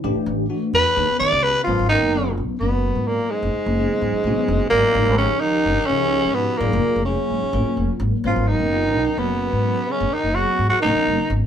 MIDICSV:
0, 0, Header, 1, 6, 480
1, 0, Start_track
1, 0, Tempo, 469484
1, 34, Time_signature, 7, 3, 24, 8
1, 11723, End_track
2, 0, Start_track
2, 0, Title_t, "Tenor saxophone"
2, 0, Program_c, 0, 66
2, 763, Note_on_c, 0, 71, 112
2, 1212, Note_off_c, 0, 71, 0
2, 1219, Note_on_c, 0, 74, 112
2, 1460, Note_on_c, 0, 71, 117
2, 1476, Note_off_c, 0, 74, 0
2, 1666, Note_off_c, 0, 71, 0
2, 1672, Note_on_c, 0, 65, 93
2, 1914, Note_off_c, 0, 65, 0
2, 1931, Note_on_c, 0, 63, 91
2, 2388, Note_off_c, 0, 63, 0
2, 2653, Note_on_c, 0, 59, 78
2, 3144, Note_on_c, 0, 58, 83
2, 3159, Note_off_c, 0, 59, 0
2, 3374, Note_on_c, 0, 56, 78
2, 3389, Note_off_c, 0, 58, 0
2, 4796, Note_off_c, 0, 56, 0
2, 4802, Note_on_c, 0, 58, 102
2, 5261, Note_off_c, 0, 58, 0
2, 5294, Note_on_c, 0, 61, 94
2, 5524, Note_on_c, 0, 63, 106
2, 5540, Note_off_c, 0, 61, 0
2, 5991, Note_on_c, 0, 61, 101
2, 6006, Note_off_c, 0, 63, 0
2, 6485, Note_on_c, 0, 59, 97
2, 6500, Note_off_c, 0, 61, 0
2, 6726, Note_on_c, 0, 58, 86
2, 6742, Note_off_c, 0, 59, 0
2, 7201, Note_off_c, 0, 58, 0
2, 7208, Note_on_c, 0, 61, 80
2, 8136, Note_off_c, 0, 61, 0
2, 8452, Note_on_c, 0, 65, 78
2, 8661, Note_on_c, 0, 63, 94
2, 8676, Note_off_c, 0, 65, 0
2, 9391, Note_on_c, 0, 59, 87
2, 9406, Note_off_c, 0, 63, 0
2, 10135, Note_on_c, 0, 61, 85
2, 10150, Note_off_c, 0, 59, 0
2, 10361, Note_on_c, 0, 63, 85
2, 10376, Note_off_c, 0, 61, 0
2, 10578, Note_on_c, 0, 66, 86
2, 10593, Note_off_c, 0, 63, 0
2, 10927, Note_off_c, 0, 66, 0
2, 10934, Note_on_c, 0, 66, 93
2, 11053, Note_off_c, 0, 66, 0
2, 11061, Note_on_c, 0, 63, 99
2, 11569, Note_off_c, 0, 63, 0
2, 11723, End_track
3, 0, Start_track
3, 0, Title_t, "Tine electric piano"
3, 0, Program_c, 1, 4
3, 40, Note_on_c, 1, 52, 90
3, 40, Note_on_c, 1, 57, 84
3, 40, Note_on_c, 1, 67, 107
3, 42, Note_on_c, 1, 62, 89
3, 459, Note_off_c, 1, 52, 0
3, 459, Note_off_c, 1, 57, 0
3, 459, Note_off_c, 1, 67, 0
3, 460, Note_off_c, 1, 62, 0
3, 504, Note_on_c, 1, 52, 67
3, 507, Note_on_c, 1, 62, 61
3, 508, Note_on_c, 1, 57, 67
3, 511, Note_on_c, 1, 66, 82
3, 931, Note_off_c, 1, 52, 0
3, 933, Note_off_c, 1, 57, 0
3, 933, Note_off_c, 1, 62, 0
3, 935, Note_off_c, 1, 66, 0
3, 986, Note_on_c, 1, 51, 73
3, 988, Note_on_c, 1, 59, 63
3, 991, Note_on_c, 1, 67, 78
3, 996, Note_on_c, 1, 61, 62
3, 1700, Note_off_c, 1, 59, 0
3, 1705, Note_off_c, 1, 61, 0
3, 1710, Note_off_c, 1, 51, 0
3, 1712, Note_off_c, 1, 67, 0
3, 1713, Note_on_c, 1, 59, 64
3, 1714, Note_on_c, 1, 54, 69
3, 1717, Note_on_c, 1, 61, 64
3, 1723, Note_on_c, 1, 70, 74
3, 2135, Note_off_c, 1, 59, 0
3, 2136, Note_off_c, 1, 54, 0
3, 2137, Note_off_c, 1, 61, 0
3, 2140, Note_off_c, 1, 70, 0
3, 2188, Note_on_c, 1, 54, 51
3, 2188, Note_on_c, 1, 61, 52
3, 2190, Note_on_c, 1, 59, 48
3, 2194, Note_on_c, 1, 65, 66
3, 2613, Note_off_c, 1, 54, 0
3, 2613, Note_off_c, 1, 61, 0
3, 2614, Note_off_c, 1, 59, 0
3, 2616, Note_off_c, 1, 65, 0
3, 2675, Note_on_c, 1, 59, 53
3, 2679, Note_on_c, 1, 61, 57
3, 2680, Note_on_c, 1, 54, 61
3, 2685, Note_on_c, 1, 70, 69
3, 3518, Note_off_c, 1, 59, 0
3, 3520, Note_off_c, 1, 54, 0
3, 3520, Note_off_c, 1, 61, 0
3, 3523, Note_off_c, 1, 70, 0
3, 3881, Note_on_c, 1, 54, 57
3, 3881, Note_on_c, 1, 68, 58
3, 3882, Note_on_c, 1, 59, 49
3, 3882, Note_on_c, 1, 61, 46
3, 4298, Note_off_c, 1, 54, 0
3, 4298, Note_off_c, 1, 68, 0
3, 4299, Note_off_c, 1, 59, 0
3, 4299, Note_off_c, 1, 61, 0
3, 4360, Note_on_c, 1, 54, 68
3, 4361, Note_on_c, 1, 59, 72
3, 4365, Note_on_c, 1, 61, 76
3, 4365, Note_on_c, 1, 66, 90
3, 5066, Note_off_c, 1, 61, 0
3, 5074, Note_off_c, 1, 54, 0
3, 5074, Note_on_c, 1, 53, 75
3, 5075, Note_off_c, 1, 59, 0
3, 5077, Note_off_c, 1, 66, 0
3, 5077, Note_on_c, 1, 63, 67
3, 5078, Note_on_c, 1, 61, 68
3, 5079, Note_on_c, 1, 67, 76
3, 5494, Note_off_c, 1, 53, 0
3, 5495, Note_off_c, 1, 63, 0
3, 5496, Note_off_c, 1, 61, 0
3, 5496, Note_off_c, 1, 67, 0
3, 5549, Note_on_c, 1, 53, 57
3, 5551, Note_on_c, 1, 61, 52
3, 5553, Note_on_c, 1, 63, 51
3, 5555, Note_on_c, 1, 67, 68
3, 5971, Note_off_c, 1, 53, 0
3, 5972, Note_off_c, 1, 61, 0
3, 5973, Note_off_c, 1, 63, 0
3, 5974, Note_off_c, 1, 67, 0
3, 6030, Note_on_c, 1, 53, 62
3, 6031, Note_on_c, 1, 61, 65
3, 6031, Note_on_c, 1, 63, 58
3, 6033, Note_on_c, 1, 67, 70
3, 6749, Note_off_c, 1, 53, 0
3, 6749, Note_off_c, 1, 61, 0
3, 6749, Note_off_c, 1, 63, 0
3, 6750, Note_off_c, 1, 67, 0
3, 6756, Note_on_c, 1, 54, 71
3, 6758, Note_on_c, 1, 58, 67
3, 6759, Note_on_c, 1, 68, 81
3, 6763, Note_on_c, 1, 65, 67
3, 7174, Note_off_c, 1, 54, 0
3, 7175, Note_off_c, 1, 58, 0
3, 7175, Note_off_c, 1, 68, 0
3, 7177, Note_off_c, 1, 65, 0
3, 7228, Note_on_c, 1, 54, 54
3, 7230, Note_on_c, 1, 58, 47
3, 7232, Note_on_c, 1, 65, 45
3, 7235, Note_on_c, 1, 68, 63
3, 7649, Note_off_c, 1, 54, 0
3, 7651, Note_off_c, 1, 58, 0
3, 7652, Note_off_c, 1, 65, 0
3, 7653, Note_off_c, 1, 68, 0
3, 7703, Note_on_c, 1, 58, 57
3, 7704, Note_on_c, 1, 54, 60
3, 7709, Note_on_c, 1, 70, 67
3, 7711, Note_on_c, 1, 65, 57
3, 8425, Note_off_c, 1, 54, 0
3, 8425, Note_off_c, 1, 58, 0
3, 8428, Note_off_c, 1, 70, 0
3, 8429, Note_off_c, 1, 65, 0
3, 8437, Note_on_c, 1, 61, 65
3, 8438, Note_on_c, 1, 59, 65
3, 8439, Note_on_c, 1, 54, 73
3, 8441, Note_on_c, 1, 70, 79
3, 8854, Note_off_c, 1, 61, 0
3, 8855, Note_off_c, 1, 54, 0
3, 8855, Note_off_c, 1, 59, 0
3, 8856, Note_off_c, 1, 70, 0
3, 8916, Note_on_c, 1, 54, 52
3, 8919, Note_on_c, 1, 59, 51
3, 8922, Note_on_c, 1, 61, 53
3, 8927, Note_on_c, 1, 65, 69
3, 9334, Note_off_c, 1, 54, 0
3, 9335, Note_off_c, 1, 59, 0
3, 9337, Note_off_c, 1, 61, 0
3, 9340, Note_off_c, 1, 65, 0
3, 9393, Note_on_c, 1, 59, 57
3, 9395, Note_on_c, 1, 54, 67
3, 9398, Note_on_c, 1, 70, 70
3, 9401, Note_on_c, 1, 61, 60
3, 10236, Note_off_c, 1, 54, 0
3, 10236, Note_off_c, 1, 59, 0
3, 10238, Note_off_c, 1, 70, 0
3, 10240, Note_off_c, 1, 61, 0
3, 10588, Note_on_c, 1, 54, 56
3, 10589, Note_on_c, 1, 59, 52
3, 10590, Note_on_c, 1, 61, 52
3, 10597, Note_on_c, 1, 68, 62
3, 11012, Note_off_c, 1, 54, 0
3, 11012, Note_off_c, 1, 59, 0
3, 11012, Note_off_c, 1, 61, 0
3, 11016, Note_off_c, 1, 68, 0
3, 11078, Note_on_c, 1, 54, 72
3, 11082, Note_on_c, 1, 59, 59
3, 11083, Note_on_c, 1, 70, 67
3, 11087, Note_on_c, 1, 61, 58
3, 11723, Note_off_c, 1, 54, 0
3, 11723, Note_off_c, 1, 59, 0
3, 11723, Note_off_c, 1, 61, 0
3, 11723, Note_off_c, 1, 70, 0
3, 11723, End_track
4, 0, Start_track
4, 0, Title_t, "Trombone"
4, 0, Program_c, 2, 57
4, 1710, Note_on_c, 2, 53, 89
4, 1935, Note_off_c, 2, 53, 0
4, 1960, Note_on_c, 2, 51, 79
4, 2403, Note_off_c, 2, 51, 0
4, 2665, Note_on_c, 2, 47, 66
4, 3131, Note_on_c, 2, 46, 67
4, 3147, Note_off_c, 2, 47, 0
4, 3368, Note_on_c, 2, 44, 78
4, 3384, Note_off_c, 2, 46, 0
4, 4798, Note_off_c, 2, 44, 0
4, 4804, Note_on_c, 2, 46, 78
4, 5262, Note_off_c, 2, 46, 0
4, 5284, Note_on_c, 2, 49, 72
4, 5525, Note_on_c, 2, 51, 85
4, 5540, Note_off_c, 2, 49, 0
4, 6006, Note_on_c, 2, 49, 74
4, 6021, Note_off_c, 2, 51, 0
4, 6499, Note_on_c, 2, 47, 75
4, 6514, Note_off_c, 2, 49, 0
4, 6744, Note_on_c, 2, 46, 86
4, 6759, Note_off_c, 2, 47, 0
4, 7193, Note_off_c, 2, 46, 0
4, 7199, Note_on_c, 2, 49, 73
4, 8132, Note_off_c, 2, 49, 0
4, 8437, Note_on_c, 2, 53, 74
4, 8695, Note_on_c, 2, 51, 81
4, 8710, Note_off_c, 2, 53, 0
4, 9398, Note_on_c, 2, 47, 67
4, 9413, Note_off_c, 2, 51, 0
4, 10107, Note_on_c, 2, 49, 73
4, 10123, Note_off_c, 2, 47, 0
4, 10341, Note_on_c, 2, 51, 73
4, 10356, Note_off_c, 2, 49, 0
4, 10571, Note_on_c, 2, 54, 75
4, 10586, Note_off_c, 2, 51, 0
4, 10919, Note_off_c, 2, 54, 0
4, 10925, Note_on_c, 2, 54, 74
4, 11028, Note_off_c, 2, 54, 0
4, 11034, Note_on_c, 2, 51, 82
4, 11554, Note_off_c, 2, 51, 0
4, 11723, End_track
5, 0, Start_track
5, 0, Title_t, "Upright bass"
5, 0, Program_c, 3, 32
5, 42, Note_on_c, 3, 33, 89
5, 135, Note_off_c, 3, 33, 0
5, 268, Note_on_c, 3, 33, 81
5, 464, Note_off_c, 3, 33, 0
5, 750, Note_on_c, 3, 40, 85
5, 848, Note_off_c, 3, 40, 0
5, 987, Note_on_c, 3, 39, 91
5, 1087, Note_off_c, 3, 39, 0
5, 1229, Note_on_c, 3, 51, 96
5, 1328, Note_off_c, 3, 51, 0
5, 1347, Note_on_c, 3, 37, 90
5, 1544, Note_off_c, 3, 37, 0
5, 1705, Note_on_c, 3, 32, 94
5, 1805, Note_off_c, 3, 32, 0
5, 1831, Note_on_c, 3, 32, 84
5, 2026, Note_off_c, 3, 32, 0
5, 2062, Note_on_c, 3, 30, 64
5, 2428, Note_on_c, 3, 35, 67
5, 2443, Note_off_c, 3, 30, 0
5, 2527, Note_off_c, 3, 35, 0
5, 2663, Note_on_c, 3, 30, 74
5, 2958, Note_off_c, 3, 30, 0
5, 3020, Note_on_c, 3, 44, 73
5, 3219, Note_off_c, 3, 44, 0
5, 3503, Note_on_c, 3, 30, 82
5, 3604, Note_off_c, 3, 30, 0
5, 3745, Note_on_c, 3, 30, 85
5, 3942, Note_off_c, 3, 30, 0
5, 4105, Note_on_c, 3, 44, 72
5, 4205, Note_off_c, 3, 44, 0
5, 4333, Note_on_c, 3, 35, 84
5, 4437, Note_off_c, 3, 35, 0
5, 4583, Note_on_c, 3, 30, 88
5, 4683, Note_off_c, 3, 30, 0
5, 4814, Note_on_c, 3, 32, 96
5, 4918, Note_off_c, 3, 32, 0
5, 5055, Note_on_c, 3, 32, 100
5, 5158, Note_off_c, 3, 32, 0
5, 5175, Note_on_c, 3, 32, 98
5, 5375, Note_off_c, 3, 32, 0
5, 5421, Note_on_c, 3, 37, 63
5, 5781, Note_on_c, 3, 31, 77
5, 5796, Note_off_c, 3, 37, 0
5, 5881, Note_off_c, 3, 31, 0
5, 6028, Note_on_c, 3, 37, 79
5, 6319, Note_off_c, 3, 37, 0
5, 6393, Note_on_c, 3, 44, 72
5, 6585, Note_off_c, 3, 44, 0
5, 6752, Note_on_c, 3, 32, 103
5, 6848, Note_off_c, 3, 32, 0
5, 6880, Note_on_c, 3, 29, 96
5, 6972, Note_off_c, 3, 29, 0
5, 7113, Note_on_c, 3, 29, 83
5, 7305, Note_off_c, 3, 29, 0
5, 7467, Note_on_c, 3, 44, 67
5, 7564, Note_off_c, 3, 44, 0
5, 7698, Note_on_c, 3, 34, 91
5, 7799, Note_off_c, 3, 34, 0
5, 7943, Note_on_c, 3, 29, 79
5, 8041, Note_off_c, 3, 29, 0
5, 8175, Note_on_c, 3, 32, 92
5, 8277, Note_off_c, 3, 32, 0
5, 8423, Note_on_c, 3, 32, 97
5, 8522, Note_off_c, 3, 32, 0
5, 8547, Note_on_c, 3, 32, 83
5, 8741, Note_off_c, 3, 32, 0
5, 8786, Note_on_c, 3, 30, 67
5, 9139, Note_off_c, 3, 30, 0
5, 9139, Note_on_c, 3, 35, 75
5, 9240, Note_off_c, 3, 35, 0
5, 9382, Note_on_c, 3, 30, 79
5, 9675, Note_off_c, 3, 30, 0
5, 9740, Note_on_c, 3, 44, 73
5, 9937, Note_off_c, 3, 44, 0
5, 10229, Note_on_c, 3, 30, 88
5, 10326, Note_off_c, 3, 30, 0
5, 10464, Note_on_c, 3, 30, 76
5, 10660, Note_off_c, 3, 30, 0
5, 10825, Note_on_c, 3, 44, 67
5, 10924, Note_off_c, 3, 44, 0
5, 11082, Note_on_c, 3, 35, 88
5, 11174, Note_off_c, 3, 35, 0
5, 11314, Note_on_c, 3, 30, 81
5, 11410, Note_off_c, 3, 30, 0
5, 11552, Note_on_c, 3, 32, 90
5, 11649, Note_off_c, 3, 32, 0
5, 11723, End_track
6, 0, Start_track
6, 0, Title_t, "Muted upright bass strokes"
6, 155, Note_on_c, 9, 29, 39
6, 257, Note_off_c, 9, 29, 0
6, 1118, Note_on_c, 9, 29, 40
6, 1220, Note_off_c, 9, 29, 0
6, 3630, Note_on_c, 9, 29, 28
6, 3732, Note_off_c, 9, 29, 0
6, 4219, Note_on_c, 9, 29, 37
6, 4321, Note_off_c, 9, 29, 0
6, 4465, Note_on_c, 9, 29, 39
6, 4567, Note_off_c, 9, 29, 0
6, 7003, Note_on_c, 9, 29, 29
6, 7105, Note_off_c, 9, 29, 0
6, 7590, Note_on_c, 9, 29, 37
6, 7692, Note_off_c, 9, 29, 0
6, 7827, Note_on_c, 9, 29, 34
6, 7930, Note_off_c, 9, 29, 0
6, 10343, Note_on_c, 9, 29, 31
6, 10445, Note_off_c, 9, 29, 0
6, 10949, Note_on_c, 9, 29, 41
6, 11051, Note_off_c, 9, 29, 0
6, 11195, Note_on_c, 9, 29, 37
6, 11297, Note_off_c, 9, 29, 0
6, 11723, End_track
0, 0, End_of_file